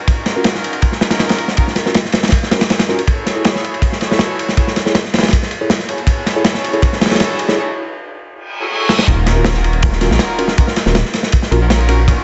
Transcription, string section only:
0.08 C#4 D#4 F4 F#4 A#4
1.01 C#4 D#4 F4 F#4 A#4
1.57 C#4 D#4 F4 F#4 A#4
2.89 C#4 D#4 F4 F#4 A#4
3.08 E4 F#4 G#4 A4 C#5
4.01 E4 F#4 G#4 A4 C#5
4.57 E4 F#4 G#4 A4 C#5
5.89 E4 F#4 G#4 A4 C#5
6.08 E4 F#4 G#4 A4 C#5
7.01 E4 F#4 G#4 A4 C#5
7.58 E4 F#4 G#4 A4 C#5
8.61 E4 F#4 G#4 A4 C#5
8.70 E4 F#4 G#4 A4 C#5
9.07 C#4 D#4 F4 F#4 A#4
10.01 C#4 D#4 F4 F#4 A#4
10.58 C#4 D#4 F4 F#4 A#4
11.61 C#4 D#4 F4 F#4 A#4
11.70 C#4 D#4 F4 F#4 A#4
12.08 C#4 D#4 F4 F#4 A#4

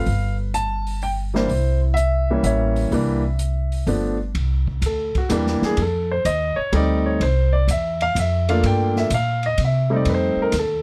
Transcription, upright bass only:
0.06 G1
1.49 C2
2.43 A1
2.91 C2
3.87 G1
4.35 C2
4.82 D2
5.15 muted upright bass stroke
5.30 E2
5.62 muted upright bass stroke
5.77 F2
6.25 D#2
6.57 muted upright bass stroke
6.72 D2
7.20 C2
7.67 E2
8.15 F2
8.63 G2
9.10 A#2
9.58 C3
10.05 F2
10.36 muted upright bass stroke
10.52 D#2

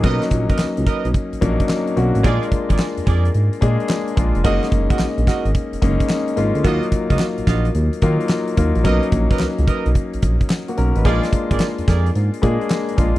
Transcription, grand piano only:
0.03 F#3 A#3 C#4 D#4
1.41 F#3 A#3 C#4 D4
1.49 D#4
1.96 F#3 A#3 C#4 F#4
2.23 G#3 A#3 D4 F4
3.61 G#3 A#3 D4 G#4
4.16 G#3 A#3 D4 F4
4.44 G#3 A#3 C#4 D#4
5.82 G#3 A#3 C#4 D#4
6.36 G#3 A#3 C#4 F4
6.64 F#3 A#3 D#4 F4
8.02 F#3 A#3 D#4 F4
8.57 F#3 A#3 D#4 F4
8.84 F#3 A#3 C#4 D#4
10.68 A#3 F#4
10.78 C#4 A#4
10.96 D#4 B4
11.05 G#3 A#3 D4 F4
12.42 G#3 A#3 D4 G#4
12.97 G#3 A#3 D4 F4

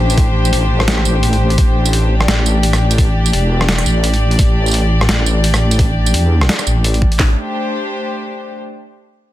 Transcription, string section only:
Already playing: A3 D4 G4 C5
2.18 D5
7.19 A3
7.25 D4
7.31 G4 C5

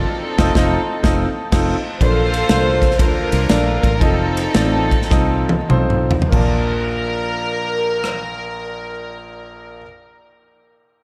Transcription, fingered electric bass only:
0.39 F1
0.55 F1
1.04 F1
1.52 F1
2.01 A#1
2.50 C2
2.99 D2
3.33 C2
3.50 A#1
3.84 A1
4.01 F1
4.55 A1
5.11 C2
5.70 B1
6.32 A#1

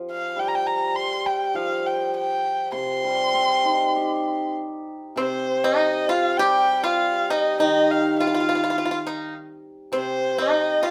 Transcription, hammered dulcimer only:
Already playing: F3
0.36 G3
1.55 F3
2.72 C3
3.04 G3
3.33 C4
3.64 D#4
3.95 G4
5.16 C3
6.39 G3
7.59 D#3
9.92 C3

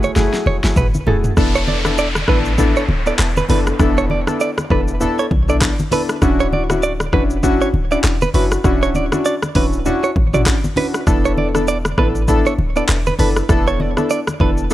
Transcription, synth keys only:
Already playing: A3 E4 F#4 G#4
0.16 A3 E4 F#4 G#4
0.64 A3 E4 F#4 G#4
1.07 A3 E4 F#4 G#4
1.37 B3 D4 E4 A4
1.85 B3 D4 E4 A4
2.28 B3 D4 E4 A4
2.58 B3 D4 E4 A4
3.06 B3 D4 E4 A4
3.49 B3 D4 E4 A4
3.79 B3 D4 E4 A4
4.27 B3 D4 E4 A4
4.70 B3 D4 E4 A4
5.00 B3 D4 E4 A4
5.48 B3 D4 E4 A4
5.91 B3 D4 E4 A4
6.22 C#4 D4 E4 F#4
6.70 C#4 D4 E4 F#4
7.13 C#4 D4 E4 F#4
7.43 C#4 D4 E4 F#4
7.91 C#4 D4 E4 F#4
8.34 C#4 D4 E4 F#4
8.64 C#4 D4 E4 F#4
9.12 C#4 D4 E4 F#4
9.55 C#4 D4 E4 F#4
9.85 C#4 D4 E4 F#4
10.33 C#4 D4 E4 F#4
10.77 C#4 D4 E4 F#4
11.07 B3 D4 E4 A4
11.54 B3 D4 E4 A4
11.98 B3 D4 E4 A4
12.28 B3 D4 E4 A4
12.76 B3 D4 E4 A4
13.19 B3 D4 E4 A4
13.49 B3 D4 E4 A4
13.97 B3 D4 E4 A4
14.40 B3 D4 E4 A4
14.71 B3 D4

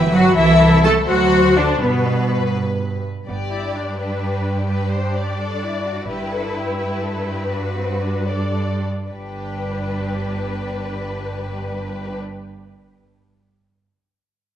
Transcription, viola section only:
0.13 F#4
0.36 E4
0.84 A4
1.08 F#4
1.56 D4
1.82 B3
3.28 B3
3.50 E4
3.75 D4
4.68 D4
6.08 E4
7.51 D4
7.76 C4
8.02 D4
8.28 D4
9.10 D4

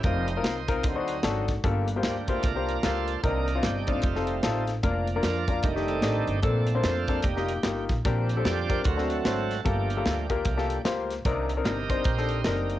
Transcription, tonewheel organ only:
0.05 G3 A#3 D#4 C5 D#5
0.85 F#3 C4 D#4
2.06 A#3 D4 G4
2.29 A3 A#3 F4
2.44 D4 F4 A#4
2.85 F4 A4 C5
3.25 D#3 A#3 D4 D#4 A#4
3.64 G4
3.89 A3 C4 F4
4.05 G3 A3 D#4
4.83 F3 A#3 D4
5.24 F4 A#4 D5
5.63 D#3 G3 A3 D4 D#4 A#4
5.88 C4 D#4 A4
6.27 G4
6.43 A3 C4 D4 A4
6.83 F4 A4 C5
7.22 G3 A#3 D#4 G4
8.05 G3 C4 D4
8.44 F4 G4 D5
8.84 F#3 A3 C4 F#4 A#4
9.09 C4 F#4 A4
9.65 F3 A3 A#3 D4 G4
10.45 F3 A3 A#3
11.25 D#3 A#3 D4
11.64 G4 A#4 D#5
12.06 D#4 G4 C5
12.46 A#4
12.70 A#3 D#4 G4

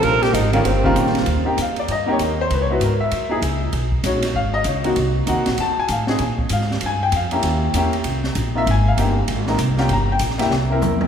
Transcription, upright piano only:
Already playing: F3 G3 A#3 C#4 F4
0.53 D#3 G3 A#3 C#4 F4
0.84 C#3 D#3 G3 A#3 F4
1.45 A#3 C4 D#4 G4
1.62 F5
1.79 D5
1.91 D#5
2.06 A#3 C4 D#4 G4
2.12 C#5
2.23 A#4
2.41 C5
2.53 B4
2.62 C#5
2.70 B3 D#4 E4 F#4 B4
2.84 A#4
3.00 E5
3.29 A#3 D#4 E4 G#4
4.04 G#3 C#4 D#4 F#4 C#5
4.36 F5
4.54 D#5
4.68 C#5
4.83 A#3 C4 D#4 F#4
5.26 A#3 C4 D#4 F#4 F#5
5.60 A5
5.80 G#5
5.92 F5
6.08 C4 C#4 D#4 G#4
6.53 F5
6.86 G#5
7.03 G5
7.16 F5
7.32 A#3 C#4 E4 G4
7.75 A#3 C#4 E4 G4
8.55 A#3 C4 D#4 F4 E5
8.71 G#5
8.88 F5
8.98 A#3 C4 D#4 G4
9.47 A#3 C4 D#4 A#4
9.77 A#3 C#4 F4 G4
9.81 G5
9.93 A#5
10.12 G5
10.38 A#3 C4 E4 G4
10.70 A#3 C4 E4 A#4

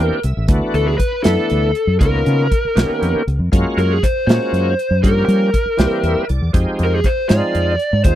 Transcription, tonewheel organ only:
Already playing: E3 A#3 C4 D4 G4
0.00 G5
0.23 E5
0.48 E3 A3 B3 D4 F#4
1.23 E3 A3 B3 D4 E4
2.00 D#3 A#3 B3 C#4 F4
2.75 D#3 A#3 B3 C#4 G4
3.52 G#3 A#3 C#4 F4 F#4
4.28 G#3 A#3 C#4 F4 F#4
5.03 F3 G3 A#3 C#4 G4
5.77 E3 G3 A#3 C4 G4
6.04 E5
6.29 D5
6.53 F3 G#3 C4 D#4 G4
7.28 F3 G#3 C4 D#4 F4
8.04 F3 G#3 C4 D#4 F4

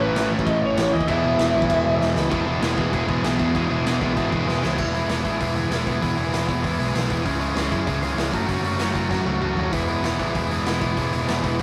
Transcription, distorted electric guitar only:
Already playing: A2 E3 A3 C#4 E4
1.07 E3 G#3 B3 E4
2.30 E3 G#3 B3 E4
2.46 E3 G#3 B3 E4
2.61 E3 G#3 B3 E4
2.77 E3 G#3 B3 E4
2.91 E3 G#3 B3 E4
3.07 E3 G#3 B3 E4
3.23 E3 G#3 B3 E4
3.38 E3 G#3 B3 E4
3.54 E3 G#3 B3 E4
3.69 E3 G#3 B3 E4
3.85 E3 G#3 B3 E4
4.00 E3 G#3 B3 E4
4.16 E3 G#3 B3 E4
4.32 E3 G#3 B3 E4
4.47 E3 G#3 B3 E4
4.62 E3 G#3 B3 E4
4.78 E3 G#3 B3 E4
4.93 E3 G#3 B3 E4
5.10 E3 G#3 B3 E4
5.25 E3 G#3 B3 E4
5.41 E3 G#3 B3 E4
5.56 E3 G#3 B3 E4
5.71 E3 G#3 B3 E4
5.86 E3 G#3 B3 E4
6.01 E3 G#3 B3 E4
6.16 E3 G#3 B3 E4
6.31 E3 G#3 B3 E4
6.48 E3 G#3 B3 E4
6.64 E3 G#3 B3 E4
6.79 E3 G#3 B3 E4
6.94 E3 G#3 B3 E4
7.10 E3 G#3 B3 E4
7.25 C#3 G#3 C#4 E4
7.40 C#3 G#3 C#4 E4
7.55 C#3 G#3 C#4 E4
7.70 C#3 G#3 C#4 E4
7.86 C#3 G#3 C#4 E4
8.02 C#3 G#3 C#4 E4
8.17 C#3 G#3 C#4 E4
8.32 F#3 A3 C#4 F#4
8.47 F#3 A3 C#4 F#4
8.63 F#3 A3 C#4 F#4
8.79 F#3 A3 C#4 F#4
8.94 F#3 A3 C#4 F#4
9.09 F#3 A3 C#4 F#4
9.25 F#3 A3 C#4 F#4
9.41 F#3 A3 C#4 F#4
9.56 F#3 A3 C#4 F#4
9.71 E3 G#3 B3 E4
9.88 E3 G#3 B3 E4
10.03 E3 G#3 B3 E4
10.20 E3 G#3 B3 E4
10.35 E3 G#3 B3 E4
10.50 E3 G#3 B3 E4
10.66 E3 G#3 B3 E4
10.82 E3 G#3 B3 E4
10.98 E3 G#3 B3 E4
11.13 E3 G#3 B3 E4
11.28 E3 G#3 B3 E4
11.43 E3 G#3 B3 E4
11.60 E3

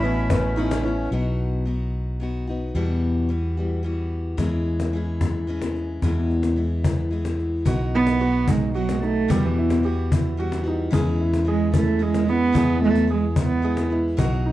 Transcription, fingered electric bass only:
Already playing: A1
1.11 B1
2.75 E2
4.38 E2
6.02 E2
7.66 B1
9.30 E2
10.92 E2
12.55 E2
14.18 B1

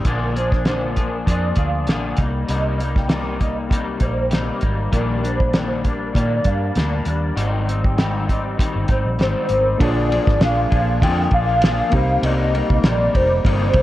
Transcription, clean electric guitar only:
0.05 A#2 D3 F3 A#3 D4 G#4
0.35 F3 A#3 D4 G#4
0.66 A#2 D3 F3 A#3 D4 G#4
0.96 F3 A#3 D4 G#4
1.26 F3 A#3 D4 G#4
1.56 F3 A#3 D4 G#4
1.87 A#2 D3 F3 A#3 D4 G#4
2.18 G3 A#3 D#4
2.48 C3 G3 A#3 D#4
2.78 G3 A#3 D#4
3.08 C3 G3 A#3 D#4
3.38 G3 A#3 D#4
3.69 C3 G3 A#3 D#4
4.00 G3 A#3 D#4
4.30 C3 G3 A#3 D#4
4.61 G3 A#3 D#4
4.91 A#2 D#3 G3 A#3 D4
5.22 G3 A#3 D4
5.53 A#2 D#3 G3 A#3 D4
5.83 G3 A#3 D4
6.13 D#3 G3 A#3 D4
6.44 G3 A#3 D4
6.75 A#2 G3 A#3 D4
7.05 G3 A#3 D4
7.36 G#2 D#3 G3 C4 D#4
7.66 G3 C4 D#4
7.97 G#2 D#3 G3 C4 D#4
8.27 G3 C4 D#4
8.57 D#3 G3 C4 D#4
8.88 G3 C4 D#4
9.18 G#2 D#3 G3 C4 D#4
9.48 G3 C4 D#4
9.79 A#2 D3 F3 A#3 D4 G#4
10.10 F3 A#3 D4 G#4
10.40 F3 A#3 D4 G#4
10.70 F3 A#3 D4 G#4
11.01 A#2 D3 F3 A#3 D4 G#4
11.32 F3 A#3 D4 G#4
11.61 F3 A#3 D4 G#4
11.92 G3 A#3 D#4
12.22 C3 G3 A#3 D#4
12.53 G3 A#3 D#4
12.83 C3 G3 A#3 D#4
13.13 G3 A#3 D#4
13.44 C3 G3 A#3 D#4
13.74 G3 A#3 D#4

